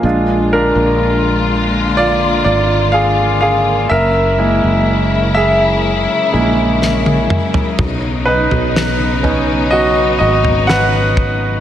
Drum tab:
SD |----------------|------------o---|----o-------o---|
T1 |----------------|-------------o--|----------------|
T2 |----------------|--------------o-|----------------|
FT |----------------|---------------o|o--o--o----o----|
BD |----------------|----------------|o-------------o-|